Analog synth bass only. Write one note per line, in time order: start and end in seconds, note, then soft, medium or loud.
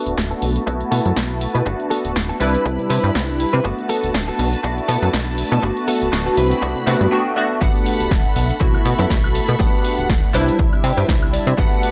0.06 0.15 D1 soft
0.18 0.34 D1 medium
0.42 0.59 B1 medium
0.67 0.84 B1 medium
0.92 1.00 B2 loud
1.06 1.13 F#2 medium
1.17 1.47 B1 medium
1.55 1.62 B2 loud
1.66 1.75 G1 loud
2.05 2.14 D1 soft
2.16 2.32 D1 medium
2.41 2.57 C2 medium
2.65 2.79 C2 medium
2.79 2.88 C3 soft
2.90 2.99 C3 loud
3.04 3.11 G2 medium
3.15 3.45 C2 loud
3.54 3.61 C3 loud
3.65 3.73 G1 loud
4.03 4.12 D1 soft
4.14 4.31 D1 medium
4.39 4.56 B1 medium
4.64 4.80 B1 medium
4.89 4.97 B2 loud
5.02 5.09 F#2 medium
5.14 5.44 B1 loud
5.52 5.59 B2 medium
5.63 5.72 G1 loud
6.02 6.10 D1 soft
6.13 6.29 D1 medium
6.37 6.54 C2 medium
6.62 6.75 C2 medium
6.76 6.85 C3 soft
6.87 6.96 C3 loud
7.01 7.08 G2 medium
7.62 7.70 G1 medium
8.00 8.09 D1 soft
8.11 8.28 D1 medium
8.36 8.52 B1 medium
8.61 8.77 B1 medium
8.85 8.94 B2 loud
8.99 9.06 F#2 medium
9.10 9.41 B1 loud
9.49 9.56 B2 medium
9.60 9.68 G1 loud
9.98 10.07 D1 soft
10.10 10.26 D1 medium
10.34 10.51 C2 medium
10.59 10.72 C2 medium
10.73 10.82 C3 soft
10.84 10.92 C3 loud
10.97 11.04 G2 medium
11.09 11.39 C2 loud
11.47 11.54 C3 medium
11.58 11.67 G1 medium